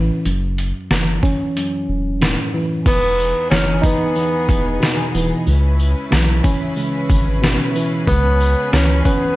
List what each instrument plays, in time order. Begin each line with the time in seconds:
Already playing: sub bass A1, tine electric piano C#2 A2 E3 C#4
0.25 sub bass F#1, tine electric piano F#2, closed hi-hat
0.58 closed hi-hat
0.90 sub bass F#1, tine electric piano E3, cross-stick, snare, closed hi-hat
1.23 tine electric piano C#4, kick, closed hi-hat
1.56 tine electric piano F#2, closed hi-hat
1.88 sub bass E1
2.21 tine electric piano A2, cross-stick, snare, closed hi-hat
2.54 tine electric piano E3
2.85 sub bass E1, tine electric piano E2, string section E3 B3 D#4 G#4, tenor saxophone B3, kick, crash, sleigh bells
3.19 sleigh bells
3.50 sub bass F#1, tine electric piano E3, tenor saxophone C#4, cross-stick, snare, sleigh bells
3.82 tenor saxophone B3, tine electric piano D#4, kick, sleigh bells
4.15 tine electric piano E2, sleigh bells
4.49 sub bass E1, kick, sleigh bells
4.80 tine electric piano B2, cross-stick, snare, sleigh bells
5.14 sub bass D#1, tine electric piano E3, sleigh bells
5.46 tine electric piano C#2, sub bass C#2, string section C#3 C#4 E4 B4, sleigh bells
5.79 sleigh bells
6.11 sub bass B1, tine electric piano E3, cross-stick, snare, sleigh bells
6.44 tine electric piano C#4, kick, sleigh bells
6.76 tine electric piano C#2, sleigh bells
7.10 sub bass G#1, kick, sleigh bells
7.42 tine electric piano B2, cross-stick, snare, sleigh bells
7.76 tine electric piano E3, sleigh bells
8.07 tine electric piano C#2, sub bass C#2, tenor saxophone B3, string section G#4, kick, sleigh bells
8.40 sleigh bells
8.72 sub bass C#2, tine electric piano E3, tenor saxophone C#4, cross-stick, snare, sleigh bells
9.05 tenor saxophone B3, tine electric piano C#4, kick, sleigh bells